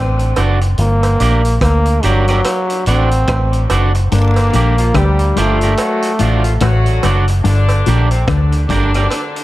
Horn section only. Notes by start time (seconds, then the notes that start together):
4.11 D3 D4
4.77 F3 F4
4.95 G3 G4
5.36 F3 F4
5.77 F#3 F#4
6.19 F3 F4
6.61 F#3 F#4
7.44 D3 D4
8.09 C3 C4
8.27 D3 D4
8.68 D3 D4